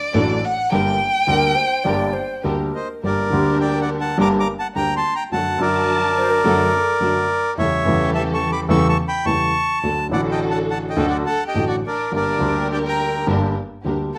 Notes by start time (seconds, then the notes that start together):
Already playing: D5
0.14 A1 A2 F#3 A3 D4 F#4 A4
0.45 F#5
0.72 G1 G2 D3 G3 A#3 D4 G4 A#4 G5
1.27 D2 D3 G3 A#3 D4 G4 A#4
1.55 C5
1.84 G1 G2 D3 G3 A#3 D4 G4 A#4 D5
2.13 C5
2.44 D2 D3 G3 A#3 D4 G4 A#4
2.75 C5 D#5
3.03 G1 G2 D3 G3 A#3 D4 G4 A#4 D5
3.30 D2 D3 G3 A#3 D4 G4 A#4
3.34 G4
3.61 D5 G5
3.81 D5 F#5
4.01 F#5 A5
4.18 G1 G2 D3 G3 A#3 D4 G4 A#4 A#5 D6
4.40 A#5 D6
4.59 F#5 A5
4.75 D2 D3 G3 A#3 D4 G4 A#4 G5 A#5
4.97 A5 C6
5.15 G5 A#5
5.32 F#2 D3 F#3 A3 D4 F#4 A4 F#5 A5
5.58 F#2 D3 F#3 D4 F#4 A#4 D5 A5
6.17 C5
6.30 A#4
6.44 F#2 D3 F#3 A3 D4 F#4 A4
7.00 F#2 D3 F#3 A3 D4 F#4 A4
7.57 E2 C#3 E3 G3 A3 C#4 E4 G4 A4 C#5 E5
7.85 E2 C#3 E3 G3 A3 C#4 E4 G4 A4
8.14 E5 A5
8.34 A5 C#6
8.52 B5 D6
8.69 E2 C#3 E3 G3 A3 C#4 E4 G4 A4 C#6 E6
8.89 A5 C#6
9.08 G5 B5
9.25 E2 C#3 E3 G3 A3 C#4 E4 G4 A4 A5 C#6
9.83 D2 D3 F#3 A3 D4 F#4 A4
10.09 A1 A2 D3 F#3 A3 D4 F#4 A4 D5 F#5
10.14 F#4
10.31 D#5 G5
10.50 F#5 A5
10.70 F#5 A5
10.89 D#5 G5
10.97 D2 D3 F#3 A3 D4 F#4 A4
11.08 F#4 D5 F#5
11.26 A4 F#5 A5
11.47 G4 D#5 G5
11.54 A1 A2 D3 F#3 A3 D4 F#4 A4
11.67 F#4 D5 F#5
11.86 D4 A#4 D5
12.12 G1 G2 D3 G3 A#3 D4 G4 A#4
12.16 A#4 D5
12.38 D2 D3 G3 A#3 G4 A#4
12.72 G4 D5 G5
12.86 A#4 G5 A#5
13.27 G1 G2 D3 G3 A#3 D4 G4 A#4
13.84 D2 D3 G3 A#3 D4 G4 A#4
14.14 A4 A5